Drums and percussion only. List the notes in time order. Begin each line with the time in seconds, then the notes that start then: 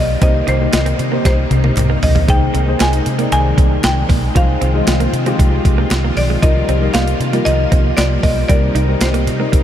0.22 kick, closed hi-hat
0.48 closed hi-hat
0.73 snare, clap, closed hi-hat, tambourine
0.86 closed hi-hat
0.99 closed hi-hat
1.25 kick, snare, closed hi-hat
1.51 closed hi-hat, high tom
1.64 high tom
1.77 clap, closed hi-hat, mid tom
2.03 floor tom, open hi-hat
2.16 floor tom
2.29 kick, closed hi-hat
2.55 closed hi-hat
2.80 snare, clap, closed hi-hat, tambourine
2.93 closed hi-hat
3.06 closed hi-hat
3.19 closed hi-hat
3.32 closed hi-hat
3.58 kick, closed hi-hat
3.84 snare, clap, closed hi-hat, tambourine
4.09 kick, open hi-hat
4.36 kick, closed hi-hat
4.62 closed hi-hat
4.87 snare, clap, closed hi-hat, tambourine
5.00 closed hi-hat
5.14 closed hi-hat
5.26 closed hi-hat
5.39 kick, closed hi-hat
5.65 kick, closed hi-hat
5.91 snare, clap, closed hi-hat, tambourine
6.17 open hi-hat
6.43 kick, closed hi-hat
6.69 closed hi-hat
6.94 snare, clap, closed hi-hat, tambourine
7.07 closed hi-hat
7.21 closed hi-hat
7.33 closed hi-hat
7.46 closed hi-hat
7.72 kick, closed hi-hat
7.98 snare, clap, closed hi-hat, tambourine
8.23 kick, open hi-hat
8.50 kick, closed hi-hat
8.76 closed hi-hat
9.01 snare, clap, closed hi-hat, tambourine
9.14 closed hi-hat
9.27 closed hi-hat
9.53 kick, closed hi-hat